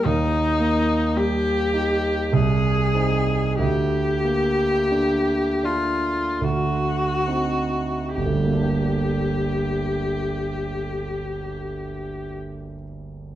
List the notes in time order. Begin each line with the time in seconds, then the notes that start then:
0.05 D#2 D#4
0.60 A#3
1.16 G3 G4
1.73 D#4
2.33 C2 G#4
2.94 C4 D#4
3.59 D2 G4
4.24 A#3
4.91 D3
5.64 D4 F4
6.41 D2 F#4
7.27 C4 D#4
8.15 G1 G4
8.26 D2
8.35 G3
8.44 A#3
8.54 D4
8.63 G4